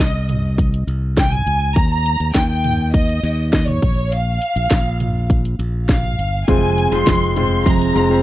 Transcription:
Already playing: D#5
0.00 C2
0.29 closed hi-hat, floor tom
0.58 kick, closed hi-hat
0.74 closed hi-hat
0.87 C2, closed hi-hat
1.17 G5, kick, snare, closed hi-hat
1.32 G#5, floor tom
1.46 C#2, closed hi-hat
1.76 D#2 A#5, kick, closed hi-hat
1.90 A#5
2.06 closed hi-hat
2.20 D#2, closed hi-hat
2.34 D#2 G5, kick, snare, closed hi-hat
2.49 G5
2.64 closed hi-hat, floor tom
2.93 D#5, kick, closed hi-hat
3.09 closed hi-hat
3.23 D#2, closed hi-hat
3.52 D#5, kick, snare, closed hi-hat
3.67 C#5, floor tom
3.82 A#1, kick, closed hi-hat
4.12 F5, closed hi-hat
4.42 closed hi-hat
4.56 A#1, closed hi-hat
4.70 A#1, kick, snare, closed hi-hat
5.00 closed hi-hat, floor tom
5.30 kick, closed hi-hat
5.45 closed hi-hat
5.59 A#1, closed hi-hat
5.89 F5, kick, snare, closed hi-hat
6.04 floor tom
6.19 G1, closed hi-hat
6.47 F1 F2 C3 F3 G#3 C4 F4 G#4 C5 F5 G#5, kick, closed hi-hat, shaker
6.62 shaker
6.77 closed hi-hat, shaker
6.92 F1 G#3 C4 F4 C5 C6, closed hi-hat, shaker
7.06 F1 F3 G#3 C4 G#4, kick, snare, closed hi-hat, shaker
7.22 shaker
7.36 G#3 C4 F4 C5 C6, closed hi-hat, floor tom, shaker
7.51 shaker
7.65 F2 C3 F3 G#3 C4 G#4 A#5, kick, closed hi-hat, shaker
7.82 closed hi-hat, shaker
7.95 F1 G#3 C4 F4 C5, closed hi-hat, shaker
8.10 G#3 C4 F4 C5, shaker

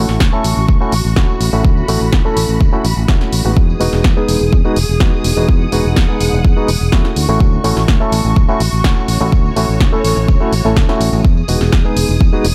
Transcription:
Already playing: A3 C#4 E4 F#4 C#6
0.09 A1, snare
0.20 D2, kick, snare, tambourine
0.33 A3 C#4 E4 A4, tambourine
0.44 A1, open hi-hat, tambourine
0.57 A1, tambourine
0.69 D2, kick, tambourine
0.81 A3 C#4 E4 F#4, tambourine
0.92 A1, open hi-hat, tambourine
1.05 A1, tambourine
1.16 A3 C#4 E4 F#4, kick, snare, tambourine
1.29 tambourine
1.40 A1 B5, open hi-hat, tambourine
1.53 A1 A3 C#4 E4 F#4, tambourine
1.64 kick, tambourine
1.77 tambourine
1.88 A1 A3 C#4 E4 F#4, open hi-hat, tambourine
2.01 A1, tambourine
2.13 kick, snare, tambourine
2.25 A3 C#4 E4 A4, tambourine
2.37 A1, open hi-hat, tambourine
2.49 A1, tambourine
2.61 D2, kick, tambourine
2.72 A3 C#4 E4 F#4, tambourine
2.84 A1, open hi-hat, tambourine
2.97 A1, tambourine
3.08 A3 C#4 E4 F#4, kick, snare, tambourine
3.21 snare, tambourine
3.33 A1, open hi-hat, tambourine
3.45 A1 G#3 B3 D#4 F#4, tambourine
3.57 E2 G#4 D#6, kick, tambourine
3.70 tambourine
3.80 E1 G#3 B3 D#4 F#4, open hi-hat, tambourine
3.93 E1, snare, tambourine
4.04 E2, kick, snare, tambourine
4.17 G#3 B3 D#4 G#4, tambourine
4.28 E1, open hi-hat, tambourine
4.41 E1, tambourine
4.53 E2, kick, tambourine
4.65 G#3 B3 D#4 F#4, tambourine
4.76 E1, open hi-hat, tambourine
4.89 E1, tambourine
5.00 E2 G#3 B3 D#4 F#4, kick, snare, tambourine
5.13 tambourine
5.24 E1, open hi-hat, tambourine
5.36 E1 G#3 B3 D#4 F#4, tambourine
5.48 E2 F#5, kick, tambourine
5.62 tambourine
5.72 E1 G#3 B3 D#4 F#4, open hi-hat, tambourine
5.85 E1, tambourine
5.96 E2, kick, snare, tambourine
6.09 G#3 B3 D#4 G#4, tambourine
6.21 E1, open hi-hat, tambourine
6.33 E1, tambourine
6.44 E2, kick, tambourine
6.57 G#3 B3 D#4 F#4, tambourine
6.68 E1, open hi-hat, tambourine
6.81 E1, tambourine
6.92 E2 A3 C#4 E4 F#4, kick, snare
7.05 snare, tambourine
7.16 D2 F#4 C#6, open hi-hat, tambourine
7.28 A1 A3 C#4 E4 F#4, tambourine
7.40 D2, kick, tambourine
7.53 tambourine
7.64 A1 A3 C#4 E4 F#4, open hi-hat, tambourine
7.77 A1, snare, tambourine
7.88 D2, kick, snare, tambourine
8.00 A3 C#4 E4 A4, tambourine
8.12 A1, open hi-hat, tambourine
8.24 A1, tambourine
8.36 D2, kick, tambourine
8.48 A3 C#4 E4 F#4, tambourine
8.60 A1, open hi-hat, tambourine
8.73 A1, tambourine
8.84 A3 C#4 E4 F#4, kick, snare, tambourine
8.97 tambourine
9.08 A1 C#5, open hi-hat, tambourine
9.20 A1 A3 C#4 E4 F#4, tambourine
9.32 D2, kick, tambourine
9.46 tambourine
9.56 A1 A3 C#4 E4 F#4, open hi-hat, tambourine
9.69 A1, tambourine
9.80 D2, kick, snare
9.92 A3 C#4 E4 A4, tambourine
10.04 A1, open hi-hat, tambourine
10.17 A1, tambourine
10.28 D2, kick, tambourine
10.40 A3 C#4 E4 F#4, tambourine
10.52 A1, open hi-hat, tambourine
10.65 A1 A3 C#4 E4 A4, tambourine
10.76 D2, kick, snare, tambourine
10.89 A3 C#4 E4 F#4, snare, tambourine
11.00 A1, open hi-hat, tambourine
11.13 A1, tambourine
11.24 E2 G#4 D#6, kick, tambourine
11.37 tambourine
11.48 E1 G#3 B3 D#4 F#4, open hi-hat, tambourine
11.61 E1, snare, tambourine
11.72 E2, kick, snare
11.85 G#3 B3 D#4 G#4, tambourine
11.96 E1, open hi-hat, tambourine
12.09 E1, tambourine
12.20 E2, kick, tambourine
12.33 G#3 B3 D#4 F#4, tambourine
12.44 E1, open hi-hat, tambourine

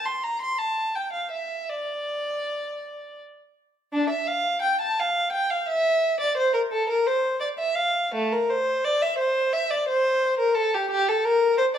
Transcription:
0.06 C6
0.24 A#5
0.42 C6
0.58 A5
0.95 G5
1.13 F5
1.31 E5
1.69 D5
3.93 D4
4.10 E5
4.27 F5
4.62 G5
4.81 A5
4.99 F5
5.32 G5
5.50 F5
5.68 E5
6.20 D5
6.37 C5
6.54 A#4
6.72 A4
6.90 A#4
7.06 C5
7.40 D5
7.59 E5
7.75 F5
8.15 A3
8.33 A#4
8.50 C5
8.84 D5
9.02 E5
9.18 C5
9.53 E5
9.71 D5
9.88 C5
10.39 A#4
10.55 A4
10.74 G4
10.91 G4
11.08 A4
11.25 A#4
11.58 C5

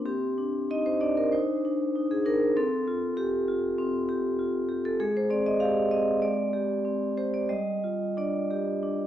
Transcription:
0.05 C4 G4
0.38 D4
0.70 D#4 D#5
0.86 C5
1.01 D4 D5
1.17 A#4
1.32 D#4 C5
1.65 D4
1.96 D#4
2.11 G#4
2.25 D4 A#4
2.57 C4 A4
2.88 F4
3.17 G4
3.48 F4
3.78 C4
4.09 G4
4.39 F4
4.68 G4
4.85 A4
5.00 G#3 G#4
5.17 C5
5.30 C4 D5
5.46 D#5
5.60 G4 F5
5.91 C4 D#5
6.22 G#3 D5
6.53 G4
6.85 C4
7.18 G4 C5
7.34 D5
7.49 G3 D#5
7.84 F4
8.17 D4 D5
8.51 G4
8.83 D4

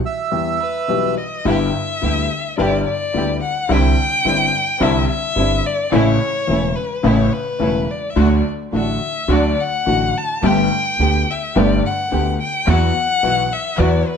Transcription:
0.06 E5
0.32 E2 E3 G3 B3 G4
0.60 B4
0.88 B1 B2 E3 G3 B3 G4
1.17 D#5
1.45 G1 G2 D3 G3 B3 E4 G4 E5
2.02 D2 D3 G3 B3 E4 G4
2.58 G1 G2 D3 G3 B3 E4 G4 D5
2.88 D5
3.14 D2 D3 G3 B3 E4 G4
3.43 F#5
3.69 C2 C3 D3 G3 C4 D4 E4 G5
4.25 G1 G2 D3 G3 C4 D4 E4
4.80 C2 C3 D3 G3 C4 D4 E4 E5
5.10 E5
5.36 G1 G2 D3 G3 C4 D4 E4
5.66 D5
5.92 A1 A2 C#3 E3 A3 C#4 E4 C#5
6.48 E1 E2 C#3 E3 A3 C#4 E4
6.76 B4
7.03 A1 A2 C#3 E3 A3 C#4 E4 C#5
7.33 B4
7.59 E1 E2 C#3 E3 A3 C#4 E4
7.91 D5
8.10 E5
8.16 D2 D3 F#3 A3 D4 F#4 D5
8.28 C#5
8.36 D5
8.73 A1 A2 D3 F#3 A3 D4 F#4 E5
9.28 D2 D3 F#3 A3 D4 F#4 D5
9.60 F#5
9.86 A1 A2 D3 F#3 A3 D4 F#4
10.18 A5
10.43 G1 G2 D3 A3 B3 G4 G5
10.99 D2 D3 A3 B3 G4
11.30 E5
11.56 G1 G2 D3 A3 B3 G4 D5
11.86 F#5
12.11 D2 D3 A3 B3 G4
12.42 G5
12.67 E2 E3 F#3 B3 E4 F#4 F#5
13.23 B1 B2 E3 F#3 B3 E4 F#4
13.53 E5
13.78 E2 E3 F#3 B3 E4 F#4 D5
14.07 B4

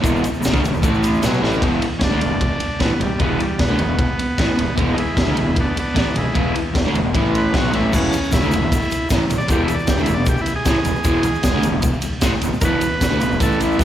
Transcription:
0.01 E1 E2 B2 E3, kick, ride
0.05 shaker
0.16 shaker
0.22 muted overdriven electric guitar stroke, ride, shaker
0.28 muted fingered electric bass stroke
0.34 shaker
0.41 E2 B2, ride, shaker
0.45 E1, snare
0.50 D2 D3 A3, kick
0.55 shaker
0.61 E1 E2 B2, shaker
0.65 ride
0.72 E1 E2 B2, shaker
0.82 A1 A2 E3 A3, kick, ride, shaker
0.94 shaker
1.03 ride, shaker
1.14 shaker
1.22 B1 B2 F#3 B3, snare, ride, shaker
1.33 shaker
1.41 A1 A2 E3 A3, snare
1.52 shaker
1.62 E1 E2 B2 E3, kick, ride
1.81 muted overdriven electric guitar stroke, muted fingered electric bass stroke, ride
1.99 E1 E2 B2 C#4, kick, snare, ride
2.04 D4
2.09 D3 A3
2.15 D2
2.20 E1 E2 B2, ride
2.31 E1 E2 B2
2.41 kick, ride
2.60 muted overdriven electric guitar stroke, muted fingered electric bass stroke, ride
2.80 A1 A2 E3 B3, kick, snare, ride
2.91 muted overdriven electric guitar stroke, muted fingered electric bass stroke
3.00 E1 E2 B2 G3, ride
3.10 muted overdriven electric guitar stroke, muted fingered electric bass stroke
3.19 E1 E2 B2 E3 B3, kick, ride
3.40 G3, muted overdriven electric guitar stroke, muted fingered electric bass stroke, ride
3.59 E1 E2 B2 B3, kick, snare, ride
3.69 D2 D3 A3
3.79 E1 E2 B2, ride
3.88 E1 E2 B2
3.99 kick, ride
4.19 muted overdriven electric guitar stroke, muted fingered electric bass stroke, ride
4.38 A1 A2 E3, kick, snare, ride
4.48 muted overdriven electric guitar stroke, muted fingered electric bass stroke
4.57 E1 E2 B2, ride
4.68 muted overdriven electric guitar stroke, muted fingered electric bass stroke
4.76 E1 E2 B2 E3, kick, ride
4.94 D#4, muted overdriven electric guitar stroke
4.98 G#3 E4, muted fingered electric bass stroke, ride
5.17 E1 E2 B2 G#3 E4, kick, snare, ride
5.26 D2 D3 A3
5.36 E1 E2 B2 G#3 E4, ride
5.46 E1 E2 B2
5.56 B3 D4, kick, ride
5.76 B3 D4, muted fingered electric bass stroke, muted overdriven electric guitar stroke, ride
5.95 A1 A2 E3 B3 D4, kick, snare, ride
6.06 muted overdriven electric guitar stroke, muted fingered electric bass stroke
6.16 E1 E2 B2 G#3 E4, ride
6.26 muted overdriven electric guitar stroke, muted fingered electric bass stroke
6.34 E1 E2 B2 E3, kick, ride
6.53 muted overdriven electric guitar stroke, muted fingered electric bass stroke, ride
6.74 E1 E2 B2, kick, snare, ride
6.85 D2 D3 A3
6.94 E1 E2 B2, ride
7.04 E1 E2 B2
7.13 A1 A2 E3 A3, kick, ride
7.35 B4, ride
7.53 B1 B2 F#3 B3, kick, snare, ride
7.58 F#4
7.70 A2 E3 A3 D#4, ride
7.75 A1 E4
7.92 E1 E2 B2 E3 C#4, kick, crash, shaker
8.12 muted overdriven electric guitar stroke, muted fingered electric bass stroke, ride, shaker
8.23 shaker
8.32 E1 E2 B2 E4, kick, snare, ride, shaker
8.41 D2 D3 A3, shaker
8.51 E1 E2 B2, ride, shaker
8.62 E1 E2 B2
8.72 kick, ride, shaker
8.91 muted fingered electric bass stroke, muted overdriven electric guitar stroke, ride, shaker
9.10 A1 A2 E3, kick, snare, ride, shaker
9.21 muted fingered electric bass stroke, muted overdriven electric guitar stroke
9.29 E1 E2 B2, ride, shaker
9.38 D5, muted overdriven electric guitar stroke, muted fingered electric bass stroke
9.48 E1 E2 B2 E3 G4, kick, ride, shaker
9.64 E4
9.68 muted overdriven electric guitar stroke, muted fingered electric bass stroke, ride, shaker
9.74 D5
9.79 shaker
9.87 E1 E2 B2 G4, kick, snare, ride, shaker
9.97 D2 D3 A3, shaker
10.03 E2 E4, ride, shaker
10.08 E1 B2
10.14 E1 E2 D5
10.18 B2
10.26 G4, kick, ride, shaker
10.37 shaker
10.41 E4
10.46 muted fingered electric bass stroke, muted overdriven electric guitar stroke, ride, shaker
10.56 G#4
10.65 A1 A2 E3, kick, snare, ride, shaker
10.75 muted fingered electric bass stroke, muted overdriven electric guitar stroke
10.84 E1 E2 B2, ride, shaker
10.95 muted overdriven electric guitar stroke, muted fingered electric bass stroke, shaker
11.04 E1 E2 B2 E3, kick, ride, shaker
11.23 muted fingered electric bass stroke, muted overdriven electric guitar stroke, ride, shaker
11.34 shaker
11.43 E1 E2 B2, kick, snare, ride, shaker
11.52 D2 D3 A3
11.63 E1 E2 B2, ride, shaker
11.72 E1 E2 B2
11.82 kick, ride, shaker
12.02 muted overdriven electric guitar stroke, muted fingered electric bass stroke, ride, shaker
12.21 A1 A2 E3, kick, snare, ride, shaker
12.33 muted overdriven electric guitar stroke, muted fingered electric bass stroke
12.41 E1 E2 B2, ride, shaker
12.51 muted fingered electric bass stroke, muted overdriven electric guitar stroke, shaker
12.61 E1 E2 B2 E3 A#4 B4, kick, ride, shaker
12.81 muted fingered electric bass stroke, muted overdriven electric guitar stroke, ride, shaker
13.01 E1 E2 B2, kick, snare, ride, shaker
13.09 D2 D3 A3
13.20 E1 E2 B2, ride, shaker
13.29 E1 E2 B2, shaker
13.39 A1 A2 E3 A3 A4, kick, ride, shaker
13.60 E4, ride, shaker
13.71 shaker
13.79 B1 B2 F#3 B3 D#4, kick, snare, shaker

